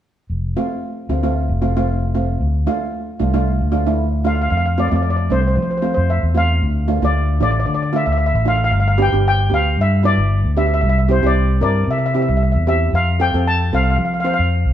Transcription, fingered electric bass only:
0, 0, Header, 1, 2, 480
1, 0, Start_track
1, 0, Key_signature, -1, "major"
1, 0, Tempo, 526316
1, 277, Time_signature, 4, 2, 24, 8
1, 13436, End_track
2, 0, Start_track
2, 0, Title_t, "Fingered electric bass"
2, 0, Program_c, 0, 33
2, 270, Note_on_c, 0, 29, 64
2, 501, Note_off_c, 0, 29, 0
2, 994, Note_on_c, 0, 38, 63
2, 1344, Note_off_c, 0, 38, 0
2, 1360, Note_on_c, 0, 29, 76
2, 2156, Note_off_c, 0, 29, 0
2, 2193, Note_on_c, 0, 38, 73
2, 2421, Note_off_c, 0, 38, 0
2, 2920, Note_on_c, 0, 36, 68
2, 3267, Note_off_c, 0, 36, 0
2, 3287, Note_on_c, 0, 38, 81
2, 4078, Note_off_c, 0, 38, 0
2, 4115, Note_on_c, 0, 41, 83
2, 4464, Note_off_c, 0, 41, 0
2, 4488, Note_on_c, 0, 41, 83
2, 4817, Note_off_c, 0, 41, 0
2, 4837, Note_on_c, 0, 36, 78
2, 5062, Note_off_c, 0, 36, 0
2, 5076, Note_on_c, 0, 53, 83
2, 5424, Note_off_c, 0, 53, 0
2, 5446, Note_on_c, 0, 41, 81
2, 5671, Note_off_c, 0, 41, 0
2, 5681, Note_on_c, 0, 40, 79
2, 6014, Note_off_c, 0, 40, 0
2, 6036, Note_on_c, 0, 38, 87
2, 6384, Note_off_c, 0, 38, 0
2, 6403, Note_on_c, 0, 38, 82
2, 6735, Note_off_c, 0, 38, 0
2, 6751, Note_on_c, 0, 33, 80
2, 6979, Note_off_c, 0, 33, 0
2, 6990, Note_on_c, 0, 50, 91
2, 7341, Note_off_c, 0, 50, 0
2, 7357, Note_on_c, 0, 38, 80
2, 7587, Note_off_c, 0, 38, 0
2, 7600, Note_on_c, 0, 33, 86
2, 7934, Note_off_c, 0, 33, 0
2, 7949, Note_on_c, 0, 31, 92
2, 8301, Note_off_c, 0, 31, 0
2, 8319, Note_on_c, 0, 31, 73
2, 8654, Note_off_c, 0, 31, 0
2, 8667, Note_on_c, 0, 38, 78
2, 8898, Note_off_c, 0, 38, 0
2, 8915, Note_on_c, 0, 43, 88
2, 9265, Note_off_c, 0, 43, 0
2, 9277, Note_on_c, 0, 31, 86
2, 9508, Note_off_c, 0, 31, 0
2, 9524, Note_on_c, 0, 38, 83
2, 9857, Note_off_c, 0, 38, 0
2, 9876, Note_on_c, 0, 36, 96
2, 10225, Note_off_c, 0, 36, 0
2, 10240, Note_on_c, 0, 36, 74
2, 10575, Note_off_c, 0, 36, 0
2, 10595, Note_on_c, 0, 43, 75
2, 10823, Note_off_c, 0, 43, 0
2, 10829, Note_on_c, 0, 48, 84
2, 11182, Note_off_c, 0, 48, 0
2, 11208, Note_on_c, 0, 36, 80
2, 11434, Note_off_c, 0, 36, 0
2, 11447, Note_on_c, 0, 40, 85
2, 11779, Note_off_c, 0, 40, 0
2, 11791, Note_on_c, 0, 41, 92
2, 12143, Note_off_c, 0, 41, 0
2, 12166, Note_on_c, 0, 41, 79
2, 12498, Note_off_c, 0, 41, 0
2, 12517, Note_on_c, 0, 36, 79
2, 12744, Note_off_c, 0, 36, 0
2, 12752, Note_on_c, 0, 53, 80
2, 13103, Note_off_c, 0, 53, 0
2, 13123, Note_on_c, 0, 41, 81
2, 13350, Note_off_c, 0, 41, 0
2, 13363, Note_on_c, 0, 36, 79
2, 13436, Note_off_c, 0, 36, 0
2, 13436, End_track
0, 0, End_of_file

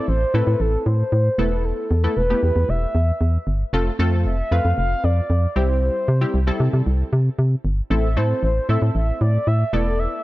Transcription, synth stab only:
0, 0, Header, 1, 2, 480
1, 0, Start_track
1, 0, Key_signature, 0, "minor"
1, 0, Tempo, 521739
1, 1513, Time_signature, 4, 2, 24, 8
1, 9416, End_track
2, 0, Start_track
2, 0, Title_t, "Synth stab"
2, 0, Program_c, 0, 62
2, 0, Note_on_c, 0, 57, 83
2, 0, Note_on_c, 0, 60, 73
2, 0, Note_on_c, 0, 64, 73
2, 0, Note_on_c, 0, 69, 88
2, 161, Note_off_c, 0, 57, 0
2, 162, Note_off_c, 0, 60, 0
2, 162, Note_off_c, 0, 64, 0
2, 163, Note_off_c, 0, 69, 0
2, 313, Note_on_c, 0, 57, 78
2, 315, Note_on_c, 0, 60, 70
2, 316, Note_on_c, 0, 64, 71
2, 318, Note_on_c, 0, 69, 85
2, 969, Note_off_c, 0, 57, 0
2, 969, Note_off_c, 0, 60, 0
2, 970, Note_off_c, 0, 64, 0
2, 971, Note_off_c, 0, 69, 0
2, 1272, Note_on_c, 0, 57, 79
2, 1275, Note_on_c, 0, 59, 74
2, 1275, Note_on_c, 0, 64, 74
2, 1277, Note_on_c, 0, 69, 87
2, 1753, Note_off_c, 0, 57, 0
2, 1754, Note_off_c, 0, 59, 0
2, 1754, Note_off_c, 0, 64, 0
2, 1755, Note_off_c, 0, 69, 0
2, 1872, Note_on_c, 0, 57, 76
2, 1873, Note_on_c, 0, 59, 70
2, 1876, Note_on_c, 0, 64, 70
2, 1877, Note_on_c, 0, 69, 86
2, 2037, Note_off_c, 0, 57, 0
2, 2037, Note_off_c, 0, 59, 0
2, 2038, Note_off_c, 0, 64, 0
2, 2039, Note_off_c, 0, 69, 0
2, 2114, Note_on_c, 0, 57, 74
2, 2115, Note_on_c, 0, 59, 69
2, 2117, Note_on_c, 0, 64, 64
2, 2118, Note_on_c, 0, 67, 78
2, 2769, Note_off_c, 0, 57, 0
2, 2770, Note_off_c, 0, 59, 0
2, 2770, Note_off_c, 0, 64, 0
2, 2771, Note_off_c, 0, 67, 0
2, 3433, Note_on_c, 0, 57, 90
2, 3435, Note_on_c, 0, 60, 83
2, 3436, Note_on_c, 0, 65, 86
2, 3438, Note_on_c, 0, 69, 101
2, 3597, Note_off_c, 0, 57, 0
2, 3598, Note_off_c, 0, 60, 0
2, 3599, Note_off_c, 0, 65, 0
2, 3600, Note_off_c, 0, 69, 0
2, 3672, Note_on_c, 0, 57, 95
2, 3674, Note_on_c, 0, 60, 86
2, 3675, Note_on_c, 0, 65, 85
2, 3677, Note_on_c, 0, 69, 106
2, 4000, Note_off_c, 0, 57, 0
2, 4001, Note_off_c, 0, 60, 0
2, 4002, Note_off_c, 0, 65, 0
2, 4003, Note_off_c, 0, 69, 0
2, 4153, Note_on_c, 0, 57, 79
2, 4154, Note_on_c, 0, 60, 69
2, 4156, Note_on_c, 0, 65, 71
2, 4157, Note_on_c, 0, 71, 84
2, 4808, Note_off_c, 0, 57, 0
2, 4809, Note_off_c, 0, 60, 0
2, 4810, Note_off_c, 0, 65, 0
2, 4811, Note_off_c, 0, 71, 0
2, 5113, Note_on_c, 0, 55, 81
2, 5115, Note_on_c, 0, 60, 77
2, 5116, Note_on_c, 0, 64, 76
2, 5117, Note_on_c, 0, 67, 86
2, 5593, Note_off_c, 0, 55, 0
2, 5594, Note_off_c, 0, 60, 0
2, 5595, Note_off_c, 0, 64, 0
2, 5595, Note_off_c, 0, 67, 0
2, 5714, Note_on_c, 0, 55, 77
2, 5714, Note_on_c, 0, 60, 69
2, 5716, Note_on_c, 0, 64, 72
2, 5718, Note_on_c, 0, 67, 85
2, 5878, Note_off_c, 0, 55, 0
2, 5878, Note_off_c, 0, 60, 0
2, 5879, Note_off_c, 0, 64, 0
2, 5879, Note_off_c, 0, 67, 0
2, 5952, Note_on_c, 0, 55, 89
2, 5954, Note_on_c, 0, 60, 81
2, 5956, Note_on_c, 0, 64, 77
2, 5957, Note_on_c, 0, 69, 100
2, 6608, Note_off_c, 0, 55, 0
2, 6609, Note_off_c, 0, 60, 0
2, 6610, Note_off_c, 0, 64, 0
2, 6610, Note_off_c, 0, 69, 0
2, 7273, Note_on_c, 0, 57, 76
2, 7274, Note_on_c, 0, 60, 70
2, 7275, Note_on_c, 0, 64, 71
2, 7277, Note_on_c, 0, 69, 84
2, 7437, Note_off_c, 0, 57, 0
2, 7437, Note_off_c, 0, 60, 0
2, 7438, Note_off_c, 0, 64, 0
2, 7439, Note_off_c, 0, 69, 0
2, 7513, Note_on_c, 0, 57, 81
2, 7514, Note_on_c, 0, 60, 77
2, 7516, Note_on_c, 0, 64, 75
2, 7518, Note_on_c, 0, 69, 85
2, 7841, Note_off_c, 0, 57, 0
2, 7841, Note_off_c, 0, 60, 0
2, 7842, Note_off_c, 0, 64, 0
2, 7843, Note_off_c, 0, 69, 0
2, 7993, Note_on_c, 0, 57, 78
2, 7994, Note_on_c, 0, 60, 69
2, 7996, Note_on_c, 0, 64, 69
2, 7997, Note_on_c, 0, 69, 86
2, 8649, Note_off_c, 0, 57, 0
2, 8649, Note_off_c, 0, 60, 0
2, 8650, Note_off_c, 0, 64, 0
2, 8651, Note_off_c, 0, 69, 0
2, 8952, Note_on_c, 0, 57, 84
2, 8953, Note_on_c, 0, 59, 76
2, 8954, Note_on_c, 0, 64, 74
2, 8956, Note_on_c, 0, 69, 90
2, 9416, Note_off_c, 0, 57, 0
2, 9416, Note_off_c, 0, 59, 0
2, 9416, Note_off_c, 0, 64, 0
2, 9416, Note_off_c, 0, 69, 0
2, 9416, End_track
0, 0, End_of_file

